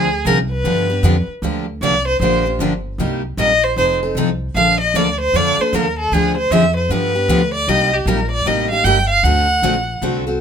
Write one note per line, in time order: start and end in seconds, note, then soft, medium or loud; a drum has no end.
0.00 0.24 D2 medium
0.00 0.24 G#4 medium
0.25 0.63 C2 medium
0.25 0.37 D3 medium
0.25 0.38 F3 medium
0.25 0.38 C4 medium
0.25 0.38 D4 medium
0.25 0.38 G#4 medium
0.25 0.38 A#4 medium
0.51 1.25 B4 medium
0.64 1.02 G2 medium
0.64 0.86 D3 medium
0.64 0.86 F3 medium
0.64 0.87 B3 medium
0.64 0.87 D4 medium
0.64 0.87 G4 medium
0.90 1.03 B3 soft
0.90 1.03 D4 medium
0.90 1.03 G4 medium
1.03 1.26 F2 medium
1.03 1.15 D3 medium
1.03 1.15 F3 medium
1.03 1.15 B3 medium
1.03 1.15 D4 medium
1.03 1.16 G4 loud
1.27 muted upright bass stroke soft
1.42 1.81 D2 medium
1.42 1.65 D3 medium
1.42 1.65 F3 medium
1.42 1.65 A#3 medium
1.42 1.65 D4 medium
1.42 1.65 G4 medium
1.81 2.19 C2 medium
1.81 1.94 D3 medium
1.81 1.94 F3 medium
1.81 1.94 A#3 medium
1.81 1.95 D4 medium
1.81 1.94 G4 medium
1.81 2.05 D5 medium
2.08 2.21 C5 medium
2.20 2.59 A#1 medium
2.20 2.43 D3 medium
2.20 2.43 F3 medium
2.20 2.43 A#3 medium
2.20 2.44 D4 medium
2.20 2.44 G4 medium
2.20 2.44 C5 medium
2.46 2.60 A#3 soft
2.46 2.60 D4 soft
2.46 2.60 G4 medium
2.59 2.98 G1 medium
2.59 2.72 D3 medium
2.59 2.72 F3 medium
2.59 2.72 A#3 medium
2.59 2.72 D4 medium
2.59 2.72 G4 medium
2.98 3.37 C2 medium
2.98 3.21 C3 medium
2.98 3.21 G3 medium
2.98 3.21 A#3 medium
2.98 3.21 D#4 medium
2.98 3.22 G4 medium
3.37 3.76 A#1 medium
3.37 3.50 C3 medium
3.37 3.50 G3 medium
3.37 3.50 A#3 medium
3.37 3.51 D#4 medium
3.37 3.50 G4 medium
3.37 3.65 D#5 medium
3.64 3.77 C5 medium
3.76 4.14 F1 medium
3.76 3.99 F3 medium
3.76 4.00 C4 medium
3.76 4.00 D#4 medium
3.76 4.00 A4 medium
3.76 3.92 C5 medium
4.03 4.16 C4 soft
4.03 4.17 D#4 medium
4.03 4.17 A4 medium
4.15 4.54 C2 medium
4.15 4.29 F3 medium
4.15 4.29 C4 medium
4.15 4.29 D#4 loud
4.15 4.29 A4 loud
4.54 4.93 A#1 medium
4.54 4.78 D3 medium
4.54 4.78 F3 medium
4.54 4.78 A#3 medium
4.54 4.78 D4 medium
4.54 4.78 A4 medium
4.54 4.79 F5 medium
4.81 4.97 D#5 medium
4.94 5.33 D2 medium
4.94 5.06 D3 medium
4.94 5.07 F3 medium
4.94 5.07 A#3 medium
4.94 5.07 D4 medium
4.94 5.07 A4 medium
4.94 5.20 D5 medium
5.21 5.38 C5 medium
5.33 5.57 F2 medium
5.33 5.56 D3 medium
5.33 5.56 F3 medium
5.33 5.57 A#3 medium
5.33 5.56 D4 medium
5.33 5.57 A4 medium
5.33 5.62 D5 medium
5.58 5.74 A#3 medium
5.58 5.74 D4 medium
5.58 5.73 A4 medium
5.58 5.76 C5 medium
5.58 muted upright bass stroke soft
5.73 6.11 D#2 medium
5.73 5.85 D3 medium
5.73 5.85 F3 medium
5.73 5.85 A#3 loud
5.73 5.86 D4 medium
5.73 5.86 A4 loud
5.73 5.98 A#4 medium
5.99 6.15 A4 medium
6.12 6.50 D2 medium
6.12 6.35 D3 medium
6.12 6.34 F3 medium
6.12 6.35 C4 medium
6.12 6.35 D4 medium
6.12 6.37 G#4 medium
6.12 6.35 G#4 medium
6.37 6.53 C5 medium
6.51 6.89 F2 medium
6.51 6.63 D3 medium
6.51 6.63 F3 medium
6.51 6.63 C4 medium
6.51 6.64 D4 medium
6.51 6.64 G#4 medium
6.51 6.76 E5 medium
6.77 6.92 C5 medium
6.89 7.28 G2 medium
6.89 7.12 D3 medium
6.89 7.12 F3 medium
6.89 7.12 B3 medium
6.89 7.12 D4 medium
6.89 7.12 G4 medium
6.89 7.53 B4 medium
7.15 7.28 B3 soft
7.15 7.29 D4 soft
7.15 7.29 G4 medium
7.28 7.67 D2 medium
7.28 7.41 D3 medium
7.28 7.41 F3 medium
7.28 7.41 B3 medium
7.28 7.41 D4 medium
7.28 7.41 G4 medium
7.54 7.70 D5 medium
7.68 8.05 C2 medium
7.68 7.90 C3 medium
7.68 7.90 G3 medium
7.68 7.90 A#3 medium
7.68 7.90 D#4 medium
7.68 7.90 G4 medium
7.68 7.95 D#5 medium
7.93 8.09 G4 medium
8.06 8.44 A#1 medium
8.06 8.19 C3 medium
8.06 8.19 G3 medium
8.06 8.19 A#3 medium
8.06 8.19 D#4 medium
8.06 8.19 G4 loud
8.06 8.31 A#4 medium
8.31 8.49 D5 medium
8.46 8.83 A1 medium
8.46 8.67 C3 medium
8.46 8.68 G3 medium
8.46 8.68 A#3 medium
8.46 8.68 D#4 medium
8.46 8.68 G4 medium
8.46 8.70 D#5 medium
8.71 8.85 A#3 soft
8.71 8.85 D#4 medium
8.71 8.85 G4 medium
8.71 8.86 F5 medium
8.84 9.22 G1 medium
8.84 8.97 C3 medium
8.84 8.97 G3 loud
8.84 8.97 A#3 loud
8.84 8.97 D#4 medium
8.84 8.97 G4 loud
8.84 9.09 G5 medium
9.10 9.26 F5 medium
9.23 9.62 D2 medium
9.23 9.46 D3 medium
9.23 9.46 A3 medium
9.23 9.46 C4 medium
9.23 9.46 F#4 medium
9.23 9.46 A4 medium
9.23 10.02 F#5 medium
9.62 10.01 A#1 medium
9.62 9.74 D3 medium
9.62 9.75 A3 medium
9.62 9.75 C4 medium
9.62 9.75 F#4 loud
9.62 9.75 A4 medium
10.02 10.39 C2 medium
10.02 10.23 D3 medium
10.02 10.23 A3 medium
10.02 10.24 C4 medium
10.02 10.24 F#4 medium
10.02 10.24 A4 medium
10.27 10.41 C4 medium
10.27 10.41 F#4 medium
10.27 10.41 A4 medium